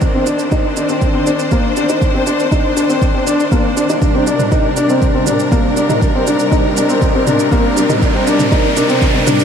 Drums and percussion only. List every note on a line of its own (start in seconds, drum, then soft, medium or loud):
0.01 kick loud
0.01 shaker soft
0.27 shaker medium
0.39 shaker soft
0.52 kick loud
0.52 shaker soft
0.77 shaker medium
0.89 shaker soft
1.02 kick loud
1.02 shaker soft
1.27 shaker medium
1.39 shaker soft
1.51 kick loud
1.51 shaker soft
1.77 shaker medium
1.89 shaker soft
2.02 kick loud
2.02 shaker soft
2.27 shaker medium
2.39 shaker soft
2.52 kick loud
2.52 shaker soft
2.77 shaker medium
2.90 shaker soft
3.02 kick loud
3.02 shaker soft
3.27 shaker medium
3.40 shaker soft
3.52 kick loud
3.52 shaker soft
3.77 shaker medium
3.89 shaker soft
4.02 kick loud
4.02 shaker soft
4.27 shaker medium
4.39 mid tom medium
4.39 shaker soft
4.52 kick loud
4.52 shaker soft
4.77 shaker medium
4.89 shaker soft
5.02 kick medium
5.02 shaker soft
5.27 mid tom medium
5.27 shaker medium
5.39 shaker soft
5.52 kick loud
5.52 shaker soft
5.77 shaker medium
5.89 mid tom medium
5.89 shaker soft
6.02 kick medium
6.02 shaker soft
6.27 shaker medium
6.39 shaker soft
6.52 kick loud
6.52 shaker soft
6.77 shaker medium
6.89 shaker soft
7.02 kick loud
7.02 shaker soft
7.27 mid tom medium
7.27 shaker medium
7.39 shaker soft
7.52 kick loud
7.52 shaker soft
7.77 shaker medium
7.89 mid tom medium
7.89 shaker soft
8.02 kick loud
8.02 shaker soft
8.27 shaker medium
8.39 mid tom medium
8.39 shaker soft
8.52 kick loud
8.52 shaker soft
8.77 shaker medium
8.89 shaker soft
9.02 kick loud
9.02 shaker soft
9.27 mid tom medium
9.27 shaker medium
9.40 shaker soft